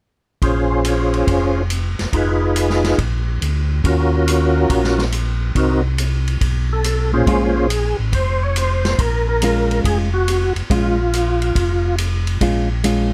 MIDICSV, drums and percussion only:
0, 0, Header, 1, 2, 480
1, 0, Start_track
1, 0, Key_signature, -5, "minor"
1, 0, Tempo, 428571
1, 465, Time_signature, 4, 2, 24, 8
1, 14712, End_track
2, 0, Start_track
2, 0, Title_t, "Drums"
2, 467, Note_on_c, 9, 36, 30
2, 472, Note_on_c, 9, 51, 43
2, 579, Note_off_c, 9, 36, 0
2, 584, Note_off_c, 9, 51, 0
2, 947, Note_on_c, 9, 44, 50
2, 947, Note_on_c, 9, 51, 55
2, 1059, Note_off_c, 9, 44, 0
2, 1059, Note_off_c, 9, 51, 0
2, 1273, Note_on_c, 9, 51, 36
2, 1385, Note_off_c, 9, 51, 0
2, 1427, Note_on_c, 9, 36, 29
2, 1430, Note_on_c, 9, 51, 49
2, 1539, Note_off_c, 9, 36, 0
2, 1542, Note_off_c, 9, 51, 0
2, 1904, Note_on_c, 9, 44, 47
2, 1904, Note_on_c, 9, 51, 56
2, 2016, Note_off_c, 9, 44, 0
2, 2016, Note_off_c, 9, 51, 0
2, 2228, Note_on_c, 9, 38, 26
2, 2230, Note_on_c, 9, 51, 35
2, 2340, Note_off_c, 9, 38, 0
2, 2342, Note_off_c, 9, 51, 0
2, 2383, Note_on_c, 9, 36, 31
2, 2386, Note_on_c, 9, 51, 48
2, 2495, Note_off_c, 9, 36, 0
2, 2498, Note_off_c, 9, 51, 0
2, 2865, Note_on_c, 9, 44, 59
2, 2865, Note_on_c, 9, 51, 59
2, 2977, Note_off_c, 9, 44, 0
2, 2977, Note_off_c, 9, 51, 0
2, 3023, Note_on_c, 9, 38, 25
2, 3135, Note_off_c, 9, 38, 0
2, 3181, Note_on_c, 9, 38, 34
2, 3186, Note_on_c, 9, 51, 37
2, 3293, Note_off_c, 9, 38, 0
2, 3298, Note_off_c, 9, 51, 0
2, 3342, Note_on_c, 9, 36, 30
2, 3344, Note_on_c, 9, 51, 48
2, 3454, Note_off_c, 9, 36, 0
2, 3456, Note_off_c, 9, 51, 0
2, 3830, Note_on_c, 9, 44, 45
2, 3830, Note_on_c, 9, 51, 53
2, 3942, Note_off_c, 9, 44, 0
2, 3942, Note_off_c, 9, 51, 0
2, 4302, Note_on_c, 9, 36, 30
2, 4309, Note_on_c, 9, 51, 53
2, 4414, Note_off_c, 9, 36, 0
2, 4421, Note_off_c, 9, 51, 0
2, 4789, Note_on_c, 9, 44, 59
2, 4789, Note_on_c, 9, 51, 59
2, 4901, Note_off_c, 9, 44, 0
2, 4901, Note_off_c, 9, 51, 0
2, 5261, Note_on_c, 9, 36, 31
2, 5262, Note_on_c, 9, 51, 55
2, 5373, Note_off_c, 9, 36, 0
2, 5374, Note_off_c, 9, 51, 0
2, 5420, Note_on_c, 9, 38, 26
2, 5532, Note_off_c, 9, 38, 0
2, 5582, Note_on_c, 9, 38, 38
2, 5694, Note_off_c, 9, 38, 0
2, 5739, Note_on_c, 9, 44, 46
2, 5739, Note_on_c, 9, 51, 54
2, 5851, Note_off_c, 9, 44, 0
2, 5851, Note_off_c, 9, 51, 0
2, 6220, Note_on_c, 9, 36, 31
2, 6223, Note_on_c, 9, 51, 52
2, 6332, Note_off_c, 9, 36, 0
2, 6335, Note_off_c, 9, 51, 0
2, 6700, Note_on_c, 9, 44, 51
2, 6700, Note_on_c, 9, 51, 59
2, 6812, Note_off_c, 9, 44, 0
2, 6812, Note_off_c, 9, 51, 0
2, 7029, Note_on_c, 9, 51, 40
2, 7141, Note_off_c, 9, 51, 0
2, 7180, Note_on_c, 9, 36, 32
2, 7182, Note_on_c, 9, 51, 51
2, 7292, Note_off_c, 9, 36, 0
2, 7294, Note_off_c, 9, 51, 0
2, 7664, Note_on_c, 9, 44, 58
2, 7664, Note_on_c, 9, 51, 56
2, 7776, Note_off_c, 9, 44, 0
2, 7776, Note_off_c, 9, 51, 0
2, 8139, Note_on_c, 9, 36, 31
2, 8144, Note_on_c, 9, 51, 52
2, 8251, Note_off_c, 9, 36, 0
2, 8256, Note_off_c, 9, 51, 0
2, 8625, Note_on_c, 9, 44, 47
2, 8625, Note_on_c, 9, 51, 64
2, 8737, Note_off_c, 9, 44, 0
2, 8737, Note_off_c, 9, 51, 0
2, 9102, Note_on_c, 9, 36, 31
2, 9104, Note_on_c, 9, 51, 51
2, 9214, Note_off_c, 9, 36, 0
2, 9216, Note_off_c, 9, 51, 0
2, 9586, Note_on_c, 9, 44, 53
2, 9586, Note_on_c, 9, 51, 59
2, 9698, Note_off_c, 9, 44, 0
2, 9698, Note_off_c, 9, 51, 0
2, 9909, Note_on_c, 9, 38, 37
2, 9911, Note_on_c, 9, 51, 37
2, 10021, Note_off_c, 9, 38, 0
2, 10023, Note_off_c, 9, 51, 0
2, 10064, Note_on_c, 9, 36, 33
2, 10066, Note_on_c, 9, 51, 56
2, 10176, Note_off_c, 9, 36, 0
2, 10178, Note_off_c, 9, 51, 0
2, 10547, Note_on_c, 9, 44, 58
2, 10547, Note_on_c, 9, 51, 62
2, 10659, Note_off_c, 9, 44, 0
2, 10659, Note_off_c, 9, 51, 0
2, 10875, Note_on_c, 9, 51, 38
2, 10987, Note_off_c, 9, 51, 0
2, 11026, Note_on_c, 9, 36, 31
2, 11035, Note_on_c, 9, 51, 58
2, 11138, Note_off_c, 9, 36, 0
2, 11147, Note_off_c, 9, 51, 0
2, 11512, Note_on_c, 9, 44, 59
2, 11512, Note_on_c, 9, 51, 62
2, 11624, Note_off_c, 9, 44, 0
2, 11624, Note_off_c, 9, 51, 0
2, 11829, Note_on_c, 9, 51, 39
2, 11941, Note_off_c, 9, 51, 0
2, 11984, Note_on_c, 9, 36, 30
2, 11992, Note_on_c, 9, 51, 54
2, 12096, Note_off_c, 9, 36, 0
2, 12104, Note_off_c, 9, 51, 0
2, 12471, Note_on_c, 9, 44, 50
2, 12471, Note_on_c, 9, 51, 60
2, 12583, Note_off_c, 9, 44, 0
2, 12583, Note_off_c, 9, 51, 0
2, 12788, Note_on_c, 9, 51, 39
2, 12900, Note_off_c, 9, 51, 0
2, 12941, Note_on_c, 9, 36, 33
2, 12946, Note_on_c, 9, 51, 55
2, 13053, Note_off_c, 9, 36, 0
2, 13058, Note_off_c, 9, 51, 0
2, 13422, Note_on_c, 9, 44, 48
2, 13422, Note_on_c, 9, 51, 60
2, 13534, Note_off_c, 9, 44, 0
2, 13534, Note_off_c, 9, 51, 0
2, 13743, Note_on_c, 9, 51, 38
2, 13855, Note_off_c, 9, 51, 0
2, 13899, Note_on_c, 9, 36, 30
2, 13900, Note_on_c, 9, 51, 55
2, 14011, Note_off_c, 9, 36, 0
2, 14012, Note_off_c, 9, 51, 0
2, 14381, Note_on_c, 9, 44, 53
2, 14381, Note_on_c, 9, 51, 62
2, 14493, Note_off_c, 9, 44, 0
2, 14493, Note_off_c, 9, 51, 0
2, 14712, End_track
0, 0, End_of_file